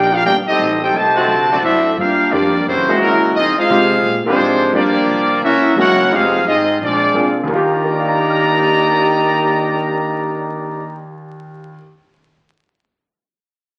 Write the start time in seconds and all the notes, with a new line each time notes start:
Already playing: A#1 A#3 D4 D#4 G4 A#4 D5 G5
0.13 D4 F4 G4 A#4 F5
0.24 G1 A#3 D4 D#4 G4 A#4 D5 G5
0.46 G3 C4 D#4 G4 A4 D#5, muted upright bass stroke
0.59 A1
0.81 C4 D#4 G4 A4 C5 G5
0.93 C2 C3 D#3 A3 G4 C5 D#5 A5
1.15 D3 A3 C4 F#4
1.28 D2
1.50 D3 F#3 A3 C4 D4 F#4 A4 D5
1.62 F#2 A3 C4 D4 E4 A4 C5 E5
1.97 G2 A#3 D4 F4 G4 A#4 F5
2.31 F2 F3 G3 A#3 D4 F4 G4 D5
2.66 F#2 C#3 E3 A#3 C4 E4 F#4 C5
2.88 G#3 A#3 C#4 E4 F#4, muted upright bass stroke
3.01 D#2 C#3 F#3 A#3 C#4 E4 A#4
3.35 F2 G#3 C4 D#4 F4 G#4 D#5
3.57 G#3 C4 D#4 F4 G#4 C5 F5
3.70 C3 G#3 C4 D#4 F4 G4
4.04 A#2
4.26 F3 G#3 A#3 C4 D4 F4 G4 C5, muted upright bass stroke
4.38 G#2
4.73 G2 F3 G3 A#3 D4 F4 G4 D5
4.95 muted upright bass stroke
5.07 C2
5.42 C#2 A#3 C#4 E4 F#4 A#4 E5
5.76 F#1 G#3 A#3 C#4 E4 F#4 A#4 C#5 F#5
6.11 F1 G#3 C4 D#4 F4 G4 G#4 C5 F5
6.45 G#1 G#3 C4 D#4 F4 G#4 D#5
6.79 A#1 F3 G#3 D4
6.83 C4 F4 G#4 D5
7.14 C2 A#3 C4 D4 F4 G#4
7.44 D#2 D#3
7.48 D#3 A#3 D4 G4 D5 D#5 A#5
7.53 F4 G4
7.84 A#4
7.92 D5
8.00 F5
8.09 A#5
8.19 D6
8.30 F6
8.41 A#6